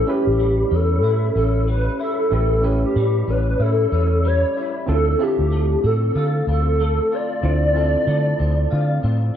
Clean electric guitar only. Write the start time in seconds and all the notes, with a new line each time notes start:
Already playing: A2 A3
0.07 C#4
0.39 G3
0.71 C#4
1.03 E4
1.36 C#4
1.68 G3
2.00 E4
2.32 A2
2.63 C#4
2.96 G3
3.28 C#4
3.60 E4
3.92 C#4
4.25 G3
4.56 E4
4.88 D3
5.19 C4
5.52 A3
5.84 C4
6.15 F4
6.48 C4
6.80 A3
7.12 F4
7.43 D3
7.75 C4
8.07 A3
8.39 C4
8.71 F4
9.03 C4